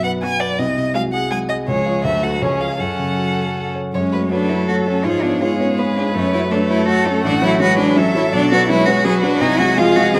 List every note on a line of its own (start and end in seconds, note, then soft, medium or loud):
0.00 0.55 B1 soft
0.00 0.61 F#2 soft
0.00 0.13 F#3 medium
0.00 0.13 B3 medium
0.00 0.13 F#4 medium
0.00 0.15 F#4 soft
0.00 0.11 F#5 medium
0.04 0.33 B4 soft
0.22 0.49 F#3 medium
0.22 0.50 B3 medium
0.22 0.50 F#4 medium
0.22 0.51 F#5 soft
0.22 0.42 G#5 medium
0.40 0.59 B4 soft
0.40 0.60 D5 medium
0.59 1.65 C2 medium
0.59 0.94 D#5 medium
0.77 1.06 C3 soft
0.94 1.22 F#3 medium
0.94 1.22 G#3 medium
0.94 1.24 F#4 soft
0.94 1.22 G#4 medium
0.94 1.02 F5 medium
1.13 1.43 G#4 soft
1.13 1.31 F#5 medium
1.31 1.59 F#3 medium
1.31 1.59 G#3 medium
1.31 1.58 G#4 medium
1.31 1.61 F#5 soft
1.31 1.39 G#5 medium
1.49 1.68 G#4 soft
1.49 1.56 D#5 medium
1.67 2.03 C#2 medium
1.67 2.06 F3 medium
1.67 2.06 G#3 medium
1.67 2.05 G#4 medium
1.67 2.04 C#5 medium
1.86 2.03 F4 soft
1.86 2.03 C#5 soft
2.04 2.41 D2 medium
2.04 2.43 F#3 soft
2.04 2.41 A3 medium
2.04 2.44 F#4 medium
2.04 2.25 E5 medium
2.23 2.40 F#4 soft
2.23 2.40 A4 soft
2.23 2.43 F#5 medium
2.41 2.78 C#2 soft
2.41 2.81 F3 soft
2.41 2.79 C#4 soft
2.41 2.78 G#4 soft
2.41 2.62 C#5 medium
2.61 2.78 F4 soft
2.61 2.78 C#5 soft
2.61 2.82 F5 medium
2.79 3.91 F#2 soft
2.79 3.75 F#3 soft
2.79 3.73 C#4 soft
2.79 3.73 A4 soft
2.79 3.76 F#5 medium
2.99 3.29 C#3 soft
3.17 3.48 F#4 soft
3.37 3.67 A4 soft
3.56 3.86 F#5 soft
3.75 3.94 C#5 soft
3.93 4.12 F#2 medium
3.93 4.33 G#3 soft
3.93 4.28 C#4 medium
3.93 4.02 C#5 medium
3.93 4.33 C#5 medium
4.12 4.29 A3 soft
4.12 4.29 F#4 soft
4.12 4.20 B4 soft
4.12 4.29 C#5 soft
4.31 5.07 F#3 medium
4.31 4.48 A3 soft
4.31 4.51 D4 medium
4.31 4.48 F#4 soft
4.31 5.05 A4 medium
4.31 4.67 B4 medium
4.31 4.48 C#5 soft
4.49 4.66 A3 soft
4.49 4.68 E4 medium
4.49 4.66 F#4 soft
4.49 4.67 C#5 soft
4.68 4.85 A3 soft
4.68 4.76 F#4 medium
4.68 4.85 F#4 soft
4.68 5.06 A4 medium
4.68 4.85 C#5 soft
4.87 5.03 A3 soft
4.87 5.06 C#4 medium
4.87 5.03 F#4 soft
4.87 5.04 C#5 soft
5.04 5.22 G#2 medium
5.04 5.41 F3 soft
5.04 5.24 F4 medium
5.04 5.41 G#4 medium
5.04 5.41 C#5 soft
5.22 5.40 B3 soft
5.22 5.43 D4 medium
5.22 5.40 F4 soft
5.22 5.40 C#5 soft
5.41 6.16 G#3 medium
5.41 5.58 B3 soft
5.41 5.60 F4 medium
5.41 5.58 F4 soft
5.41 6.15 G#4 medium
5.41 5.79 C#5 medium
5.41 5.58 C#5 soft
5.60 5.76 B3 soft
5.60 5.68 C#4 medium
5.60 5.76 F4 soft
5.60 5.77 C#5 soft
5.78 5.95 B3 soft
5.78 5.85 B3 medium
5.78 5.95 F4 soft
5.78 6.52 B4 medium
5.78 5.95 C#5 soft
5.97 6.13 B3 soft
5.97 6.04 D4 medium
5.97 6.13 F4 soft
5.97 6.14 C#5 soft
6.14 6.33 F#2 medium
6.14 6.51 A3 medium
6.14 6.33 C#4 medium
6.14 6.50 C#5 medium
6.33 6.50 A3 soft
6.33 6.41 E4 medium
6.33 6.50 F#4 soft
6.33 6.50 C#5 medium
6.51 7.62 A3 medium
6.51 6.68 A3 soft
6.51 6.59 D4 medium
6.51 6.68 F#4 soft
6.51 7.24 A4 medium
6.51 6.88 B4 medium
6.51 6.68 C#5 medium
6.69 6.86 A3 soft
6.69 6.87 E4 medium
6.69 6.86 F#4 soft
6.69 6.86 C#5 medium
6.87 7.04 A3 soft
6.87 7.04 F#4 soft
6.87 7.09 F#4 medium
6.87 7.23 A4 medium
6.87 7.04 C#5 medium
7.06 7.22 A3 soft
7.06 7.25 C#4 medium
7.06 7.22 F#4 soft
7.06 7.23 C#5 soft
7.23 7.42 A1 medium
7.23 7.32 D4 medium
7.23 7.60 F#4 medium
7.23 7.59 F#5 medium
7.42 7.58 F#3 soft
7.42 7.61 E4 medium
7.42 7.59 F#4 soft
7.42 7.59 C#5 medium
7.60 7.77 F#3 soft
7.60 7.99 G#3 medium
7.60 7.77 F#4 medium
7.60 7.79 F#4 loud
7.60 7.99 B4 medium
7.60 7.96 C#5 medium
7.60 7.77 C#5 medium
7.79 7.95 F#3 medium
7.79 7.99 D4 medium
7.79 7.96 F#4 medium
7.79 7.96 C#5 medium
7.97 8.13 F#3 medium
7.97 8.33 F#3 medium
7.97 8.15 C#4 medium
7.97 8.14 F#4 soft
7.97 8.71 A4 medium
7.97 8.14 C#5 medium
7.97 8.34 E5 medium
8.15 8.32 F#3 soft
8.15 8.23 E4 medium
8.15 8.32 F#4 medium
8.15 8.32 C#5 medium
8.33 8.51 B1 medium
8.33 8.71 F#3 medium
8.33 8.51 D4 loud
8.33 8.71 D5 medium
8.51 8.68 F#3 medium
8.51 8.67 F#4 loud
8.51 8.68 F#4 medium
8.51 8.68 B4 medium
8.68 8.86 F#3 medium
8.68 9.06 G#3 medium
8.68 8.87 E4 loud
8.68 9.79 F#4 medium
8.68 8.86 F#4 medium
8.68 8.86 B4 medium
8.68 9.05 C#5 medium
8.86 9.04 F#3 medium
8.86 9.06 F#4 medium
8.86 9.04 F#4 medium
8.86 9.04 B4 medium
9.04 9.79 F#3 medium
9.04 9.21 F#3 medium
9.04 9.22 F#4 medium
9.04 9.21 G#4 loud
9.04 9.42 B4 medium
9.04 9.22 B4 medium
9.22 9.40 F#3 medium
9.22 9.43 D4 medium
9.22 9.40 F#4 medium
9.22 9.40 B4 medium
9.41 9.59 C2 medium
9.41 9.61 D#4 loud
9.41 9.79 G#5 medium
9.59 9.76 G#3 medium
9.59 9.80 F#4 loud
9.59 9.76 F#4 medium
9.59 9.76 G#4 medium
9.77 10.16 F3 medium
9.77 9.94 G#3 medium
9.77 9.97 F4 loud
9.77 9.94 F#4 medium
9.77 10.16 G#4 medium
9.77 9.95 G#4 medium
9.77 10.15 F5 medium
9.96 10.13 G#3 medium
9.96 10.13 F#4 medium
9.96 10.13 G#4 medium
10.13 10.20 D#3 medium
10.13 10.20 G#3 soft
10.13 10.20 F#4 medium
10.13 10.20 G#4 medium
10.13 10.20 C5 medium
10.13 10.20 D#5 medium